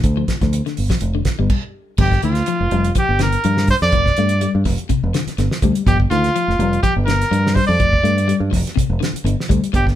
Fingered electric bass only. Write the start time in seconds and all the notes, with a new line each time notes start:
0.04 D2
0.28 muted fingered electric bass stroke
0.42 D2
0.78 G1
1.02 F1
1.39 G1
1.98 G1
2.23 D2
2.61 F1
2.72 F1
3.09 G1
3.45 G2
3.82 F2
3.93 F1
4.18 G2
4.55 G2
4.66 F1
4.90 muted fingered electric bass stroke
5.03 F1
5.27 muted fingered electric bass stroke
5.38 G1
5.62 D2
5.86 G1
6.11 D2
6.48 F1
6.59 F1
6.96 G1
7.31 G2
7.69 F2
7.80 F1
8.03 G2
8.40 G2
8.53 F1
8.77 muted fingered electric bass stroke
8.90 F1
9.13 muted fingered electric bass stroke
9.24 G1
9.50 D2
9.74 G1